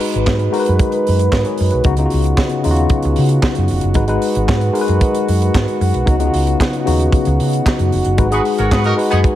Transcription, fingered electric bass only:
0.15 G#1
0.27 G#2
0.69 F#2
1.08 F#2
1.33 G#2
1.60 F#2
1.73 B1
1.85 C#2
2.13 C#2
2.65 D#2
3.05 C#2
3.18 C#3
3.58 F#2
3.70 F1
3.83 F#1
3.96 G#1
4.36 G#1
4.49 G#2
4.89 F#2
5.29 F#2
5.55 G#2
5.81 F#2
5.94 B1
6.08 C#2
6.34 C#2
6.87 D#2
7.27 C#2
7.40 C#3
7.80 F#2
7.93 F1
8.06 F#1
8.19 G#1
8.59 G#1
8.72 G#2
9.13 F#2

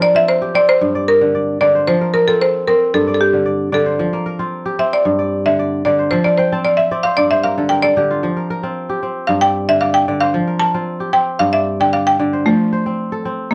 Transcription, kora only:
Already playing: F3 C4 F4 G4
0.01 A#4
0.15 C4 F4
0.42 G4
0.55 C4
0.81 G2
0.95 D5
1.21 D3
1.35 D5
1.61 D3 D5
1.75 C5
1.88 F3
2.01 A#4
2.14 A#4
2.28 C4 F4
2.68 C4
2.94 G2
3.07 D5
3.33 D3
3.46 D5
3.72 D3 D5
3.86 C5
3.99 F3
4.13 A#3
4.26 A#4
4.39 C4 F4
4.66 G4
4.79 C4
5.05 G2
5.19 D5
5.46 D3
5.59 D5
5.85 D3 D5
5.99 C5
6.12 F3 E5
6.26 F5
6.39 G5
6.52 C4 A5
6.65 F5
6.79 E5
6.91 C4 D5
7.05 C5
7.18 G2 D5
7.31 C5
7.44 A#4
7.58 D3 A4
7.71 A#4
7.84 A4
7.97 D3 G4
8.11 F4
8.23 F3
8.37 A#4
8.50 A#4
8.63 C4 F4
8.89 G4
9.03 C4
9.29 G2
9.42 D5
9.69 D3
9.82 D5
10.08 D3 D5
10.21 C5
10.34 F3
10.47 A#4
10.61 A#4
10.74 C4 F4
11.00 G4
11.13 C4
11.40 G2
11.54 D5
11.80 D3
11.94 D5
12.19 D3 D5
12.33 C5
12.46 F3
12.73 C5
12.86 C4
13.12 A4
13.25 C4

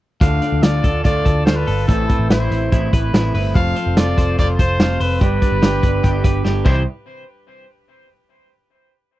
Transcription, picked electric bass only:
0.21 D2
0.52 D2
0.63 D2
0.84 D2
1.05 D2
1.26 D2
1.47 D2
1.68 G1
1.89 A1
2.19 A1
2.30 A1
2.51 A1
2.72 A1
2.93 A1
3.14 A1
3.34 G1
3.55 F1
3.87 F1
3.97 F1
4.18 F1
4.39 F1
4.59 F1
4.79 F1
5.00 F1
5.21 G1
5.52 G1
5.62 G1
5.83 G1
6.04 G1
6.24 G1
6.45 G1
6.66 C2

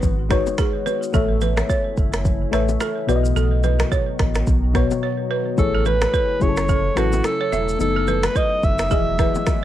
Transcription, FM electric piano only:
Already playing: G#3 D#4 F#4 B4
0.29 G#3 D#4 F#4 C#5
1.12 A3 A4 C#5 E5
2.51 A3 A4 C#5 E5
3.07 B2 B3 F#4 D5
3.16 D#5
4.73 B2 B3 F#4 C#5
5.57 A3 E4 G#4 C#5
6.40 F#3 C#4 E4 G#4
6.49 A4
6.95 F#3 C#4 E4 A4
7.79 B3 D#4 A4
8.90 E3 E4 G#4 D#5
9.18 E3 E4 G#4 E5

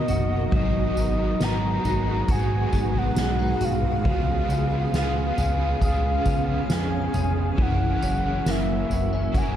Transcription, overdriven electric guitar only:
Already playing: B2 D#3 F#3 B3 D#4 A#4
0.51 G#2 D#3 F#3 B3 D#4 G#4
1.39 F#3 B3 D#4 G#4
1.83 F#3 B3 D#4 G#4
2.26 G#2 D#3 F#3
2.31 B3 D#4 G#4
4.04 C#3 G#3 B3 F4 G#4
4.92 G#3 B3 F4
4.96 G#4
5.35 F4 G#4
5.39 B3
5.79 C#3 G#3 B3
5.84 F4 G#4
7.55 F#3 C#4
7.60 E4 A#4
9.32 F#3 C#4
9.36 E4 A#4

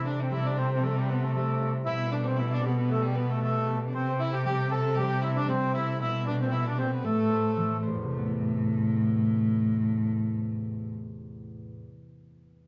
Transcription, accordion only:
0.06 D4
0.22 C4
0.32 E4
0.45 D4
0.58 C4
0.72 C4
0.82 A3
0.98 G3
1.08 B3
1.23 A3
1.34 A3
1.86 E4
2.12 D4
2.23 C4 D4
2.39 E4
2.53 D4
2.65 B3
2.79 B3
2.92 A3
3.06 G3
3.17 B3
3.30 A3
3.42 A3
3.94 C4
4.20 E4
4.33 G4
4.46 G4
4.71 A4
4.97 G4
5.23 E4
5.36 D4
5.48 C4
5.74 E4
6.01 E4
6.26 D4
6.41 C4
6.52 E4
6.67 D4
6.79 C4
6.94 B3
7.04 A3

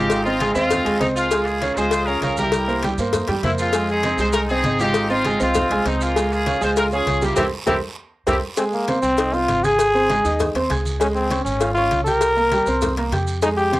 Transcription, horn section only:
Already playing: C4 D#4 G4
0.24 C4 F4
0.53 C4 F4
0.99 D#4
1.16 G#3 A#3 F4
1.45 F4 G#4
1.76 F4 G#4 C5
2.06 A#4
2.22 A#4
2.39 E4 G4 A#4
3.44 E4
3.59 G#3 C4 F4
3.90 C4 D#4 G#4
4.20 C5
4.33 D#4 A#4
4.49 C4 D#4 G#4
4.80 C4 D#4 G4
5.10 C4 F4
5.41 C4 F4
5.87 D#4
6.01 G#3 A#3 F4
6.32 F4 G#4
6.63 C5
6.77 F4 A#4
6.93 F4 G#4
7.22 A#3 E4 G4
7.36 C4 E4 G4
7.66 C4 E4 G4
8.28 C4 E4 G4

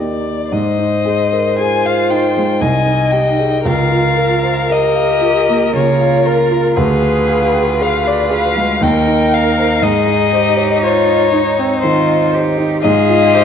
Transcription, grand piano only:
0.00 A#3 D#4 G4
0.52 G#2
0.78 D#4
1.05 G#4
1.33 A#4
1.59 G#4
1.85 C5
2.11 D#4
2.37 G#3
2.61 C2
2.86 D#4
3.13 G4
3.39 G#4
3.65 C#2
3.91 F4
4.17 A#4
4.43 C5
4.69 A#4
4.96 F5
5.21 F4
5.49 A#3
5.73 C#3
6.00 F5
6.25 A#4
6.51 F4
6.77 D2
7.02 G#4
7.28 F5
7.53 G5
7.79 G#4
8.04 F5
8.29 G#4
8.56 G#3
8.81 D#2
9.06 D#4
9.33 A#4
9.58 C5
9.81 G#2
10.07 D#4
10.33 C5
10.57 C#5
10.83 C5
11.09 D#5
11.32 D#4
11.59 C4
11.83 D#3
12.07 D#5
12.33 C5
12.57 D#4
12.84 G#2
13.09 F4
13.34 C5

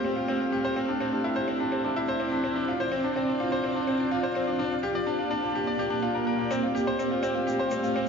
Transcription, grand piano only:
Already playing: C4 F4 G4 C5
0.05 C4
0.16 F4
0.28 C4
0.40 F4
0.52 G4
0.65 C5
0.76 C4
0.88 D4
1.00 C4
1.12 D4
1.24 E4
1.36 C5
1.48 C4
1.60 D4
1.72 C4
1.84 D4
1.96 E4
2.08 C5
2.20 C4
2.32 D4
2.44 C4
2.56 D4
2.68 F4
2.80 C5
2.92 C4
3.04 D4
3.16 C4
3.28 D4
3.40 F4
3.52 C5
3.64 C4
3.76 D4
3.87 C4
4.00 D4
4.11 F4
4.23 C5
4.35 C4
4.47 D4
4.59 D4
4.71 F4
4.83 G4
4.95 D5
5.07 D4
5.19 F4
5.31 D4
5.43 F4
5.55 G4
5.67 D5
5.79 G4
5.90 D4
6.03 F4
6.15 A#4
6.27 A#4
6.39 F4
6.51 C4
6.63 F4
6.75 G4
6.87 C5
6.99 C4
7.11 F4
7.23 C4
7.35 F4
7.47 G4
7.59 C5
7.71 C4
7.84 F4
7.96 C4

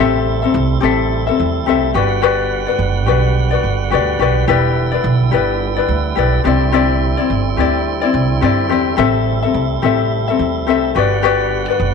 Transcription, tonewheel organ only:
Already playing: G3 E4
0.00 C3 A3
1.95 D3 B3 F#5
4.48 B3 E4
6.45 D3 G3 C4 E4
8.97 C3 G3 A3
10.96 D3 B3 F#5

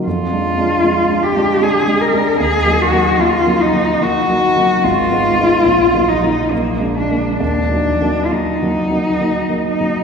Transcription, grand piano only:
0.07 F2
0.33 G#3 D4
0.58 G#3 D4
0.84 G#3 D4
1.10 G#3 D4
1.37 G#3 D4
1.62 G#3 D4
1.88 G#3 D4
2.14 G#3 D4
2.40 D#2
2.66 F#3 A#3 D#4
2.93 F#3 A#3 D#4
3.18 F#3 A#3 D#4
3.47 F#3 A#3 D#4
3.73 F#3 A#3 D#4
4.01 F#3 A#3 D#4
4.30 F#3 A#3 D#4
4.57 F#3 A#3 D#4
4.84 G#1
5.12 G#3 B3 D#4
5.40 G#3 B3 D#4
5.65 A#1
5.94 F#3 A#3 D#4
6.23 F#3 A#3 D#4
6.51 A#1
6.80 G#3 A#3 D4
7.10 G#3 A#3 D4
7.40 D#2
7.72 F#3 A#3 D#4
8.01 F#3 A#3 D#4
8.33 F#3 A#3 D#4
8.62 F#3 A#3 D#4
8.91 F#3 A#3 D#4
9.21 F#3 A#3 D#4
9.50 F#3 A#3 D#4
9.81 F#3 A#3 D#4

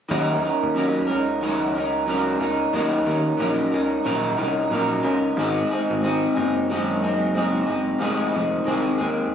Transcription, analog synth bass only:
0.11 D#2
0.63 D#2
1.09 C#2
2.40 C#2
2.74 D#2
3.07 D#2
3.40 A#1
3.74 C#2
4.06 A#1
4.38 C2
4.71 A#1
5.04 C#2
5.37 G#1
5.90 G#1
6.37 F#1
7.69 F#1
8.02 F1
8.35 F1
8.67 C2
9.01 D#2

